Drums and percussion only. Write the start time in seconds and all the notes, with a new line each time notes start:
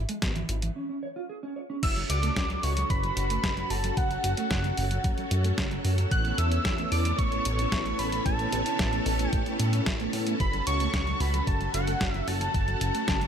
0.09 closed hi-hat
0.22 kick, snare, closed hi-hat
0.36 closed hi-hat
0.49 closed hi-hat
0.62 closed hi-hat
1.83 kick, closed hi-hat, crash
1.96 closed hi-hat
2.10 closed hi-hat
2.23 closed hi-hat
2.36 kick, snare, closed hi-hat
2.50 closed hi-hat
2.63 open hi-hat
2.77 closed hi-hat
2.90 kick, closed hi-hat
3.03 closed hi-hat
3.17 closed hi-hat
3.30 closed hi-hat
3.44 kick, snare, closed hi-hat
3.57 closed hi-hat
3.70 open hi-hat
3.84 closed hi-hat
3.97 kick, closed hi-hat
4.11 closed hi-hat
4.24 closed hi-hat
4.37 closed hi-hat
4.51 kick, snare, closed hi-hat
4.64 closed hi-hat
4.77 open hi-hat
4.91 closed hi-hat
5.04 kick, closed hi-hat
5.18 closed hi-hat
5.31 closed hi-hat
5.44 closed hi-hat
5.58 kick, snare, closed hi-hat
5.71 closed hi-hat
5.85 open hi-hat
5.98 closed hi-hat
6.11 kick, closed hi-hat
6.25 closed hi-hat
6.38 closed hi-hat
6.52 closed hi-hat
6.65 kick, snare, closed hi-hat
6.78 closed hi-hat
6.92 open hi-hat
7.05 closed hi-hat
7.19 kick, closed hi-hat
7.32 closed hi-hat
7.45 closed hi-hat
7.59 closed hi-hat
7.72 kick, snare, closed hi-hat
7.86 closed hi-hat
7.99 open hi-hat
8.12 closed hi-hat
8.26 kick, closed hi-hat
8.39 closed hi-hat
8.52 closed hi-hat
8.66 closed hi-hat
8.79 kick, snare, closed hi-hat
8.93 closed hi-hat
9.06 open hi-hat
9.19 closed hi-hat
9.33 kick, closed hi-hat
9.46 closed hi-hat
9.60 closed hi-hat
9.73 closed hi-hat
9.86 kick, snare, closed hi-hat
10.00 closed hi-hat
10.13 open hi-hat
10.27 closed hi-hat
10.40 kick, closed hi-hat
10.53 closed hi-hat
10.67 closed hi-hat
10.80 closed hi-hat
10.94 kick, snare, closed hi-hat
11.07 closed hi-hat
11.20 open hi-hat
11.34 closed hi-hat
11.47 kick, closed hi-hat
11.61 closed hi-hat
11.74 closed hi-hat
11.87 closed hi-hat
12.01 kick, snare, closed hi-hat
12.14 closed hi-hat
12.28 open hi-hat
12.41 closed hi-hat
12.54 kick, closed hi-hat
12.68 closed hi-hat
12.81 closed hi-hat
12.95 closed hi-hat
13.08 kick, snare, closed hi-hat
13.21 closed hi-hat